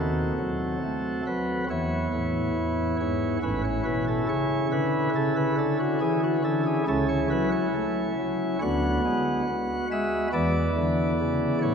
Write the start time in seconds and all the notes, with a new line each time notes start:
Already playing: D#2 D#3 C4 F#4 A4
0.39 F#3
0.83 A3
1.26 F#3 B4
1.70 E2 E3 B3 E4 C#5
2.14 A2
2.56 E2
3.00 G#2 C#5
3.42 A1 A2 C#4 E4 B4
3.64 C#5
3.85 B2 B4
4.08 A4
4.29 C#3 C#5
4.72 D3 B4
5.15 C#3 A4
5.36 B4
5.58 D3 A4
5.79 F#4
6.01 E3 G#4
6.24 F#4
6.44 D3 A4
6.66 G#4
6.88 C#2 C#3 C#4 E4 A4
7.09 C#5
7.30 F#3 B4
7.52 C#5
7.74 A3
8.18 F#3
8.62 D2 D3 B3 F#4 F#5
9.05 G#3
9.49 B3
9.91 G#3 E5
10.33 E2 E3 B3 E4 D5
10.77 D3
11.20 C#3
11.62 A2 C#5